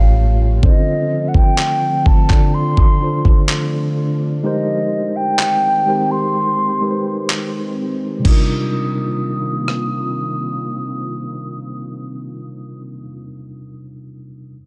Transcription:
Already playing: A1 A2 F3 G3 A3 C#4 F4 G4 C#5 F5, downlifter
0.62 D3 F3 A3 C4 E4 A4 C5 D#5, kick
0.70 F4
1.28 F#5
1.34 G5, kick
1.58 clap
2.06 A5, kick
2.29 D3 D4 F4 A4 D5, kick, clap
2.54 D4 C6
2.77 kick
3.00 D3 D4 F4 A4 C5
3.25 kick
3.49 clap
4.43 D#3 G#3 C4 D#4 G4 A#4 C5 D#5
5.16 G5
5.39 clap
5.86 G#3 D#4 G4 A#4 C5
6.11 C6
6.81 G#3 D#4 G4 A#4 B4
6.91 C5
7.30 clap
8.19 C3 G3
8.24 D#3 A#3 C4 D4 D#4 F4 D#6, kick, crash
8.29 F4 A#4
9.68 cross-stick

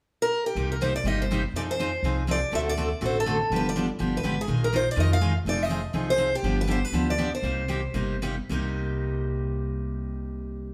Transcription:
0.22 A#4
0.46 G4
0.55 C2 C3 G3 A#3 D#4 G4
0.72 A#4
0.81 C3 G3 A#3 D#4 G4 C5
0.96 D5
1.04 G1 C3 G3 A#3 D#4 G4
1.08 D#5
1.22 C5
1.31 C3 G3 A#3 D#4 G4
1.52 F2 F3 C4 D#4 D5
1.57 G#4
1.71 C5
1.79 F3 C4 D#4 G#4
2.03 C2 F3 C4 D#4 G#4
2.27 F3 C4 D#4 G#4
2.31 D5
2.52 D2 D3 A3 C4 F#4 A4 E5
2.69 D5
2.77 D3 A3 C4 F#4 A4
3.01 A1 D3 A3 C4 F#4 A4
3.05 C5
3.20 A4
3.26 D3 A3 C4 F#4 A4
3.50 G1 D3 F3 B3 D4 G4
3.56 B4
3.69 D5
3.76 D3 F3 B3 D4 G4
3.99 G1 D3 F3 B3 D4 G4
4.17 B4
4.23 G#1 D3 F3 B3 D4 G4
4.41 G#4
4.47 A#1 D#3 G#3 D#4 F4 A#4
4.64 A#4
4.72 D#3 G#3 D#4 F4 A#4 C5
4.91 D5
4.96 F2 D#3 G#3 D#4 F4 A#4
5.00 D#5
5.13 F5
5.21 D#3 G#3 D#4 F4 A#4
5.45 F1 F3 C4 D#4 G#4 D5
5.63 D#5
5.69 F3 C4 D#4 G#4
5.93 C2 F3 C4 D#4 G#4
6.10 C5
6.18 F3 C4 D#4 G#4
6.35 G4
6.43 G1 D3 F3 B3 D4 G4
6.61 B4
6.67 D3 F3 B3 D4 G4 C5
6.85 B4
6.92 D2 D3 F3 B3 D4 G4
7.10 D5
7.18 D3 F3 B3 D4 G4
7.35 C5
7.42 C2 C3 G3 A#3 D#4 G4
7.68 C3 G3 A#3 D#4 G4
7.94 G1 C3 G3 A#3 D#4 G4
8.22 C3 G3 A#3 D#4 G4
8.49 C2 C3 G3 A#3 D#4 G4

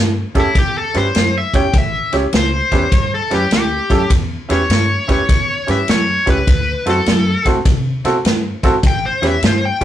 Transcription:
Already playing: G2
0.35 E2 C#4 E4 G4 A4, kick, snare, ride
0.40 E4
0.55 E2 G4, kick, snare, ride
0.78 A4
0.94 G2 C#4 E4 G4 B4 C5, snare, ride
1.15 F#2, snare, ride
1.38 E5
1.53 E2 C#4 E4 G4 C#5 G5, kick, snare, ride
1.74 A1, kick, snare, ride
1.78 E5
2.12 C#2 C#4 E4 G4 C#5, snare, ride
2.33 C#2 C5, snare, ride
2.71 E2 C#4 E4 G4 B4, kick, snare, ride
2.92 G2, kick, snare, ride
3.15 A4
3.30 F#2 C#4 E4 G4 B4, snare, ride
3.34 G4
3.51 D2 G4, snare, ride
3.90 F#2 C#4 E4 G4 A4, kick, snare, ride
4.10 E2, kick, snare, ride
4.49 E2 C#4 E4 G4 B4 C#5, snare, ride
4.69 G2, snare, ride
5.08 E2 C#4 E4 G4 B4, kick, snare, ride
5.12 C#5
5.29 E2, kick, snare, ride
5.67 G2 C#4 E4 G4 B4, snare, ride
5.71 E5
5.88 F#2 C#5, snare, ride
6.26 C#2 C#4 E4 G4 B4, kick, snare, ride
6.30 B4
6.47 D2, kick, snare, ride
6.86 F#2 C4 E4 F#4 A4, snare, ride
6.90 A4
7.06 F#2, snare, ride
7.45 A2 C4 E4 F#4 A4, kick, snare, ride
7.65 C3, kick, snare, ride
8.04 B2 C4 E4 F#4 A4, snare, ride
8.25 G2, snare, ride
8.63 G#1 C4 E4 F#4 A4, kick, snare, ride
8.83 A1 G5, kick, snare, ride
9.06 C5
9.22 E2 C#4 E4 G4 B4, snare, ride
9.27 E5
9.42 G2, snare, ride
9.46 C5
9.65 G5
9.81 E2 C#4 E4

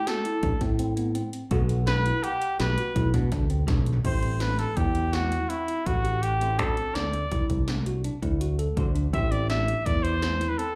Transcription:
Already playing: A3 C5
0.07 F#4 A4, snare, closed hi-hat
0.25 E4, closed hi-hat
0.43 A1 D4, kick, closed hi-hat
0.61 A2 C4, kick, snare, closed hi-hat
0.79 C4, closed hi-hat
0.97 B3, closed hi-hat
1.15 C4, closed hi-hat
1.33 closed hi-hat
1.51 B1 B2 B3 F#4 A4 F#5, kick, closed hi-hat
1.69 closed hi-hat
1.87 D4 B4, snare, closed hi-hat
2.05 E4, closed hi-hat
2.23 G4 F#5, closed hi-hat
2.42 closed hi-hat
2.60 B1 G4 B4, snare, closed hi-hat
2.77 F#4, closed hi-hat
2.95 B1 E4, kick, closed hi-hat
3.14 B2 D4, kick, snare, closed hi-hat
3.32 D2 D4, kick, snare, closed hi-hat
3.50 C4, closed hi-hat
3.68 B1 D4, kick, snare, closed hi-hat
3.80 mid tom
3.86 closed hi-hat
3.93 floor tom
4.04 A1 G3 A3 C4 E4 C5, kick, closed hi-hat, crash
4.22 C4, closed hi-hat
4.40 D4 B4, snare, closed hi-hat
4.59 A4, snare, closed hi-hat
4.76 E2 E4 G4, kick, closed hi-hat
4.95 closed hi-hat
5.13 C4 F#4, snare, closed hi-hat
5.31 E4, snare, closed hi-hat
5.49 C4 E4, closed hi-hat
5.68 E4, closed hi-hat
5.86 A1 F#4, kick, closed hi-hat
6.04 G4, closed hi-hat
6.22 G4, closed hi-hat
6.41 A3 C4 E4 G4 C5, closed hi-hat
6.59 D2 D3 C4 D4 F#4 A4 C5, kick, closed hi-hat
6.77 C4, closed hi-hat
6.95 D2 D4 D5, snare, closed hi-hat
7.13 closed hi-hat
7.32 C2 E4, kick, closed hi-hat
7.50 C2, kick, closed hi-hat
7.68 D4, snare, closed hi-hat
7.86 F#4, closed hi-hat
8.04 D4, closed hi-hat
8.22 D2 E4, kick, closed hi-hat
8.41 F#4, closed hi-hat
8.59 A4, closed hi-hat
8.77 D2 D3 D4 F#4 C5, kick, closed hi-hat
8.95 D4, closed hi-hat
9.13 A1 A3 C4 E4 G4 C5 E5, kick, closed hi-hat
9.31 C4 D5, closed hi-hat
9.50 D4 E5, snare, closed hi-hat
9.68 closed hi-hat
9.86 E2 E4 D5, kick, closed hi-hat
10.03 C5, closed hi-hat
10.22 C4, snare, closed hi-hat
10.41 E4, snare, closed hi-hat
10.49 B4
10.58 C4 A4, closed hi-hat

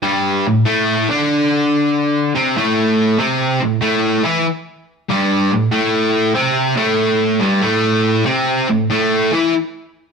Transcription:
0.03 G2 G3
0.46 A2
0.65 A2 A3
1.09 D3 D4
2.35 C3 C4
2.57 A2 A3
3.19 C3 C4
3.62 A2
3.81 A2 A3
4.24 E3 E4
5.09 G2 G3
5.51 A2
5.72 A2 A3
6.35 C3 C4
6.76 A2 A3
7.39 G2 G3
7.61 A2 A3
8.25 C3 C4
8.69 A2
8.90 A2 A3
9.32 E3 E4

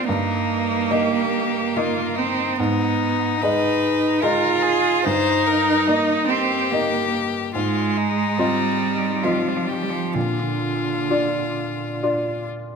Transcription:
0.07 G2 A#3 D#4
0.90 A#3 D#4 G4 D#5
1.77 A#3 D#4 F4 D#5
2.16 C4 D#4
2.58 G#2 B3 D#4
3.41 G#3 D#4 B4 D#5
4.22 G#3 D#4 F4 A#4 D#5
4.63 G#4
5.05 G2 D#4 C5
5.47 A#4
5.88 A#3 D#4 D#5
6.28 C4 G4
6.71 A#3 D#4 D#5
7.54 G#2 G#3 F4
7.96 D#4
8.38 G3 C4 F4 D#5
9.23 F3 C4 F4 D#5
9.32 G3
9.39 F3
9.48 G3
9.56 F3
9.64 G3
9.69 G4
9.74 F3
9.83 G3
9.90 F3
10.14 A#2 D3 F4
11.10 D4 F4 D5
12.03 D4 F4 D5

